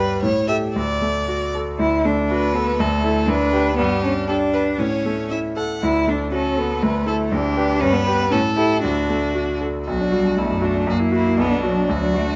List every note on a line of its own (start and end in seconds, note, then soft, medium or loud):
0.00 0.21 G2 soft
0.00 0.20 G4 soft
0.00 0.20 B4 soft
0.00 0.22 B4 soft
0.23 0.73 A2 soft
0.23 0.47 C#5 medium
0.48 0.72 G4 soft
0.48 0.72 A4 soft
0.48 0.56 E5 medium
0.76 1.77 D2 soft
0.76 1.53 D5 soft
1.02 1.43 A3 soft
1.28 1.70 F#4 soft
1.55 1.80 A4 soft
1.79 2.76 D2 soft
1.79 2.07 E4 medium
2.05 2.45 A3 soft
2.05 2.57 D4 medium
2.31 2.70 F#4 soft
2.31 2.82 B4 medium
2.55 2.82 B3 soft
2.55 2.79 A4 soft
2.80 3.26 D2 medium
2.80 3.28 A3 medium
2.80 3.30 A4 soft
3.04 3.26 E4 soft
3.04 3.26 A4 soft
3.27 3.76 D2 soft
3.27 3.76 D4 medium
3.27 3.78 B4 medium
3.53 3.75 G4 soft
3.53 3.76 B4 soft
3.77 4.77 G2 soft
3.77 4.02 B3 medium
3.77 4.28 G4 medium
4.03 4.11 C#4 medium
4.03 4.44 D4 soft
4.28 4.81 D4 medium
4.28 4.69 G4 soft
4.28 4.37 A4 soft
4.54 4.79 B4 soft
4.54 4.62 B4 soft
4.79 5.79 A2 soft
4.79 5.31 C#4 medium
4.79 5.25 C#5 soft
5.05 5.47 A3 soft
5.31 5.72 E4 soft
5.31 5.39 E5 soft
5.57 5.82 A4 soft
5.57 5.82 F#5 soft
5.82 6.80 D2 soft
5.82 6.10 E4 medium
6.07 6.48 A3 soft
6.07 6.31 D4 soft
6.32 6.60 C#4 soft
6.32 6.72 F#4 soft
6.32 6.84 A4 soft
6.57 6.85 B3 soft
6.57 6.82 A4 soft
6.82 7.30 D2 soft
6.82 7.34 A3 soft
6.82 7.07 B4 soft
7.06 7.29 E4 soft
7.06 7.29 A4 soft
7.06 7.15 A4 soft
7.32 7.80 D2 soft
7.32 7.82 D4 medium
7.32 7.82 G4 soft
7.57 7.79 G4 soft
7.57 7.79 B4 soft
7.80 8.30 G2 soft
7.80 7.95 C#4 medium
7.80 8.33 B4 medium
7.93 8.30 B3 medium
8.07 8.29 G4 soft
8.07 8.30 B4 soft
8.30 8.82 A2 soft
8.30 8.38 C#4 medium
8.30 8.83 A4 medium
8.56 8.82 E4 medium
8.56 8.80 G4 soft
8.56 8.81 A4 soft
8.83 9.84 D2 soft
8.83 9.60 D4 medium
8.83 9.60 F#4 soft
9.09 9.51 A3 soft
9.35 9.76 F#4 soft
9.61 9.87 A4 soft
9.86 10.36 B1 soft
9.86 10.13 F#3 soft
9.86 10.40 F#4 soft
10.00 10.20 D4 soft
10.12 10.36 G3 soft
10.12 10.32 F#4 soft
10.24 10.45 D4 soft
10.37 10.87 B1 soft
10.37 10.90 A3 soft
10.37 10.66 E4 soft
10.50 10.70 F#2 soft
10.62 10.89 D4 soft
10.62 10.82 F#4 soft
10.74 10.88 D4 soft
10.87 11.37 F#2 soft
10.87 11.41 A#3 medium
10.87 10.97 F#4 soft
10.99 11.20 E4 soft
11.12 11.39 E4 soft
11.12 11.33 F#4 soft
11.26 11.39 E4 soft
11.37 11.87 B1 soft
11.37 11.64 B3 medium
11.37 11.91 D4 soft
11.50 11.71 D4 soft
11.63 11.89 F#3 medium
11.63 11.84 F#4 soft
11.77 11.89 D4 soft
11.89 12.36 D2 soft
11.89 12.17 F#3 medium
11.89 12.36 F#4 soft
12.02 12.22 D4 soft
12.14 12.36 A3 medium
12.14 12.34 F#4 soft
12.27 12.36 D4 soft